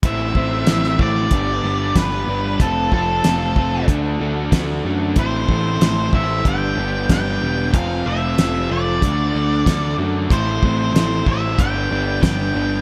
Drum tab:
HH |x---x---x---x---|x---x---x---x---|x---x---x---x---|x---x---x---x---|
SD |----oo------o---|----o-------o---|----o-------o---|----o-------o---|
BD |o-o---o-o---o---|o-o---o-o---o---|o-o---o-o---o---|o-------o---o---|

HH |x---x---x---x---|
SD |----o-------o---|
BD |o-o---o-o---o---|